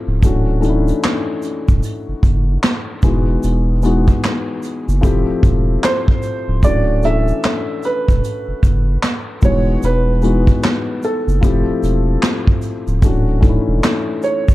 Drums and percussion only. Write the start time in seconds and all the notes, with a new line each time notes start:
0.23 kick, closed hi-hat, shaker
0.63 closed hi-hat, shaker
0.88 closed hi-hat, shaker
1.03 snare, clap, closed hi-hat, shaker
1.42 closed hi-hat, shaker
1.68 kick, shaker
1.83 closed hi-hat, shaker
2.23 kick, closed hi-hat, shaker
2.63 snare, clap, closed hi-hat, shaker
3.02 kick, closed hi-hat, shaker
3.43 closed hi-hat, shaker
3.82 closed hi-hat, shaker
4.07 kick, shaker
4.23 snare, clap, closed hi-hat, shaker
4.62 closed hi-hat, shaker
4.89 shaker
5.03 kick, closed hi-hat, shaker
5.43 kick, closed hi-hat, shaker
5.84 snare, clap, closed hi-hat, shaker
6.08 kick
6.22 closed hi-hat, shaker
6.63 kick, closed hi-hat, shaker
7.03 closed hi-hat, shaker
7.28 shaker
7.43 snare, clap, closed hi-hat, shaker
7.83 closed hi-hat, shaker
8.08 kick, shaker
8.24 closed hi-hat, shaker
8.63 kick, closed hi-hat, shaker
9.03 snare, clap, closed hi-hat, shaker
9.42 kick, open hi-hat, shaker
9.83 closed hi-hat, shaker
10.22 closed hi-hat, shaker
10.47 kick, closed hi-hat, shaker
10.63 snare, clap, closed hi-hat, shaker
11.03 closed hi-hat, shaker
11.28 shaker
11.43 kick, closed hi-hat, shaker
11.83 closed hi-hat, shaker
12.23 snare, clap, closed hi-hat, shaker
12.47 kick
12.62 closed hi-hat, shaker
12.87 shaker
13.02 kick, closed hi-hat, shaker
13.43 kick, closed hi-hat, shaker
13.83 snare, clap, closed hi-hat, shaker
14.22 closed hi-hat, shaker
14.48 kick, shaker